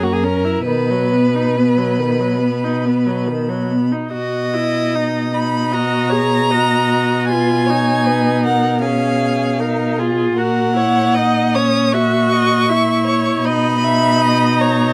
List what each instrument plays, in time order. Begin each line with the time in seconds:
Already playing: cello F#2, violin A#5
0.02 viola A#3, violin F#4
0.13 violin G#4
0.24 viola C#4, violin A#4
0.45 viola E4
0.66 cello B2, viola D#3, violin B4 B5
0.91 viola F#3
1.12 viola B3
1.35 viola D#4
1.56 viola B3
1.78 viola F#3
1.99 viola D#3
2.20 viola F#3
2.41 viola B3
2.64 viola D#4
2.86 viola B3
3.07 viola F#3
3.27 viola D#3
3.49 viola F#3
3.71 viola B3
3.92 viola D#4
4.12 cello B2, viola F#4, violin D#5
4.54 viola E4
4.95 viola D#4
5.34 viola D#4, violin B5
5.71 viola F#4, violin D#5 A#5
6.09 viola G#4, violin C#5
6.50 viola F#4, violin D#5
7.28 viola F4, violin B4 G#5
7.66 viola D#4, violin C#5
8.06 violin B4
8.45 violin A#4 F#5
8.82 viola C#4, violin G#4 F5
9.59 viola D#4, violin A#4
9.98 viola F4, violin G#4
10.36 cello A#2, viola F#4, violin A#4 F#5
10.76 viola E4, violin C#5
11.14 viola D#4, violin D#5
11.55 viola C#4, violin C#5 D#6
11.92 viola F#4, violin E5 C#6
12.32 violin D#5
12.69 viola E4, violin E5
13.07 violin C#5
13.44 cello B2, viola D#4, violin D#5 B5
13.82 viola D#4, violin E5
14.22 violin D#5
14.58 violin C#5 A#5